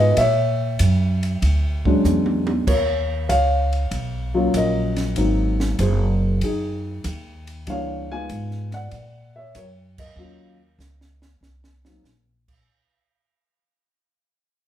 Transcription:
Already playing: G#2 F3 G#3 B3 D#4 D#5
0.00 B4
0.12 D#5
0.17 A#2 C#5 E5, kick, ride
0.79 F#2, kick, hi-hat pedal, ride
1.23 ride
1.42 D2, kick, ride
1.85 F#3 G#3 C#4 D4, kick
2.04 E2, hi-hat pedal, high tom
2.26 high tom
2.47 high tom
2.67 D#2 A#4 C#5, kick, crash
3.29 C#2 C#5 F5, kick, hi-hat pedal, ride
3.73 ride
3.91 B1, kick, ride
4.34 F#3 A#3 C#4 F4
4.54 A#1 A#4 D#5, kick, hi-hat pedal, ride
4.96 snare, ride
5.16 G#1 F#3 A#3 C4 D#4, kick, ride
5.60 snare
5.79 F#1 G#4 C5, kick, hi-hat pedal, ride
6.41 F#2 D#4 G#4, kick, ride
7.04 D#2, kick, hi-hat pedal, ride
7.47 ride
7.67 C#2 E3 G3 A#3 D4 C#5 F5, kick, ride
8.11 F3 G#3 B3 D#4 F5 G#5
8.29 G#2, kick, hi-hat pedal, ride
8.51 snare
8.71 D5 F#5, snare, ride
8.91 A#2, kick, ride
9.36 C#5 E5
9.55 F#2 A#4 C#5, kick, hi-hat pedal, ride
9.98 A#4 D#5, kick, crash
10.16 D#2 F#3 A#3 C#4 F4
10.79 C#2, snare, hi-hat pedal
11.01 snare
11.22 snare
11.41 C2, snare
11.64 snare
11.85 F#3 A#3 C4 D#4, snare
12.04 A#1, snare, hi-hat pedal
12.48 kick, crash

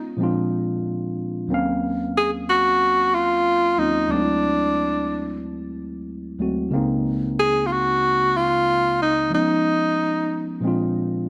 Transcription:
Already playing: G#3 B3 C#4 D#4 F4
0.17 A#2 F3 G#3
0.21 C4 D4 F4
1.47 D#2 F#3 A#3
1.52 C4 C#4 F5
2.17 G#4
2.50 F#4
3.14 F4
3.78 D#2 F#3 A#3 C4 C#4 D#4 F4
4.08 D2 F#3 G#3 D4
4.12 A3 C4 D#4
4.22 E4
6.39 D2 F#3 G#3 A3 C4 F#4
6.69 C#2 C#3 G#3
6.73 A#3 C4 D#4
7.40 G#4
7.67 F4
7.72 F#4
8.37 F4
9.02 D#4
9.30 F3 G#3 B3
9.34 C#4 D#4
10.61 A#2 F3 G#3
10.65 C4 D4 F4

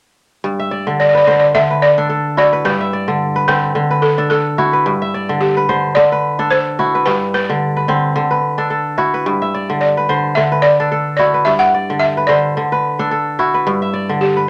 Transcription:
0.44 G2
0.60 E5
0.71 D5
0.87 D3
1.00 D5
1.09 D5
1.15 B4 D5
1.25 D3 C5 D5
1.31 D5
1.40 D5
1.55 D3 E5
1.70 B4
1.82 D5
1.98 D4 A4
2.10 A4
2.37 E4 F#4 D5
2.53 B4
2.65 G2 B4
2.80 E5
2.93 D5
3.08 D3
3.36 B4
3.48 D3 C4 B4
3.75 D3
3.91 B4
4.02 A4
4.18 D4 A4
4.30 A4
4.58 E4 F#4
4.73 B4
4.86 G2
5.02 E5
5.14 D5
5.29 D3
5.41 G4
5.57 B4
5.69 D3 C5
5.95 D3 D5
6.12 B4
6.39 D4 A4
6.51 A4 C5
6.79 E4 F#4
6.95 B4
7.06 G2 B4
7.34 B4 D5
7.50 D3
7.77 B4
7.88 D3 C4
8.16 D3
8.31 B4
8.58 D4 A4
8.70 A4
8.98 E4 F#4
9.14 B4
9.26 G2
9.42 E5
9.54 D5
9.70 D3
9.81 D5
9.97 B4
10.09 D3 C5
10.35 D3 E5
10.52 B4
10.62 D5
10.80 D4 A4
10.92 A4
11.17 E4 F#4 D5
11.34 B4
11.45 G2 E5
11.59 F#5
11.74 D5
11.90 D3
11.99 E5
12.17 B4
12.27 D3 C5 D5
12.57 D3
12.72 B4
12.99 D4 A4
13.11 A4
13.39 E4 F#4
13.54 B4
13.67 G2
13.82 E5
13.94 D5
14.09 D3
14.21 G4
14.36 B4

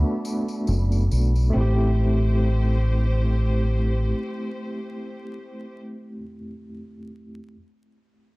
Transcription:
Already playing: A3 B3 D4 F#4 A4 D5 B5
0.25 tambourine
0.48 tambourine
0.67 F#1, tambourine
0.92 tambourine
1.11 B1, tambourine
1.35 tambourine
1.50 A3 C4
1.55 A1 A3 E4 G4 C5
1.61 G4

